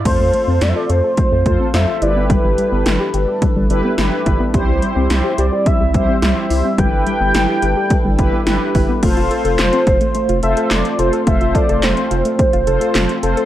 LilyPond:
<<
  \new Staff \with { instrumentName = "Soft synth lead" } { \time 4/4 \key f \lydian \tempo 4 = 107 c''8 c''8 d''32 e''32 d''16 c''4. e''8 d''8 | b'2.~ b'8 r8 | r4. d''8 e''8 e''4. | g''8 g''2. r8 |
r4 c''8 c''4 e''8 d''8 c''8 | e''8 d''8 c''4 c''4. r8 | }
  \new Staff \with { instrumentName = "Analog polysynth" } { \time 4/4 \key f \lydian <f' a' c''>4. r4 <f' a' c''>8 <f' a' c''>8 <e' g' b'>8~ | <e' g' b'>4 r4. <e' g' b'>8 <e' g' b'>4 | <e' g' c''>4. r4 <e' g' c''>8 <e' g' c''>4 | <e' g' b'>4. r4 <e' g' b'>8 <e' g' b'>4 |
<f' a' c''>4. r4 <f' a' c''>4 <f' a' c''>8 | <f' a' c''>4. r4 <f' a' c''>4 <f' a' c''>8 | }
  \new Staff \with { instrumentName = "Analog synth pad" } { \time 4/4 \key f \lydian << { <c' f'>2.~ <c' f'>8 <d' a' b'>8~ | <d' a' b'>1 | c'1 | <d' a' b'>1 |
<c' f'>1~ | <c' f'>1 | } \\ { a2.~ a8 <g e'>8~ | <g e'>1~ | <g e'>1~ | <g e'>1 |
a1~ | a1 | } >> }
  \new Staff \with { instrumentName = "Synth arpeggio sound" } { \time 4/4 \key f \lydian a16 a16 a16 c'16 f'16 a'16 a'16 a'16 a16 a16 a16 c'16 f'16 r16 e'16 b16 | g16 g16 g16 b16 e'16 g'16 g'16 g'16 g16 g16 g16 b16 e'16 r16 e'16 b16 | g16 g16 g16 c'16 e'16 g'16 g'16 g'16 g16 g16 g16 c'16 e'16 r16 e'16 c'16 | g16 g16 g16 b16 e'16 g'16 g'16 g'16 g16 g16 g16 b16 e'16 r16 e'16 b16 |
a16 f'16 a'16 a'16 r16 c'16 f'16 a16 a16 f'16 a'16 a'16 r8 a'16 a'16 | a16 f'16 a'16 a'16 r16 c'16 f'16 a16 a16 f'16 a'16 a'16 r8 a'16 a'16 | }
  \new Staff \with { instrumentName = "Analog synth bass" } { \clef bass \time 4/4 \key f \lydian f,16 f,16 r16 f,16 f,16 r16 f,16 r8 f,16 f,16 r16 f,16 r16 g,,8~ | g,,16 g,,16 r16 g,,16 g,,16 r16 g,,16 r8 g,,16 g,,16 r16 g,,16 r16 g,,16 r16 | c,16 c,16 r16 c,16 c,16 r16 c,16 r8 c,16 c,16 r16 c,16 r16 c,16 r16 | g,,16 g,,16 r16 g,,16 g,,16 r16 g,,16 r8 g,,16 g,,16 r16 g,,16 r16 g,,16 r16 |
f,,16 f,,16 r16 f,,16 f,,16 r16 f,,16 r8 f,,16 f,,16 r16 f,,16 r16 f,,16 r16 | f,,16 f,,16 r16 f,,16 f,,16 r16 f,,16 r8 f,,16 f,,16 r16 f,,16 r16 f,,16 r16 | }
  \new DrumStaff \with { instrumentName = "Drums" } \drummode { \time 4/4 <cymc hh bd>8 hh8 <hh sn>8 hh8 <hh bd>8 <hh bd>8 <hh sn>8 hh8 | <hh bd>8 hh8 <hh sn>8 hh8 <hh bd>8 hh8 <hh sn>8 <hh bd>8 | <hh bd>8 hh8 <hh sn>8 hh8 <hh bd>8 <hh bd>8 <hh sn>8 hho8 | <hh bd>8 hh8 <hh sn>8 hh8 <hh bd>8 <hh bd>8 <hh sn>8 <hho bd>8 |
<cymc hh bd>16 hh16 hh16 hh16 <hc hh sn>16 hh16 <hh bd>16 hh16 hh16 hh16 hh16 hh16 <hc hh sn>16 hh16 hh16 hh16 | <hh bd>16 hh16 <hh bd>16 hh16 <hc hh sn>16 hh16 hh16 hh16 <hh bd>16 hh16 hh16 hh16 <hc hh sn>16 hh16 hh16 hh16 | }
>>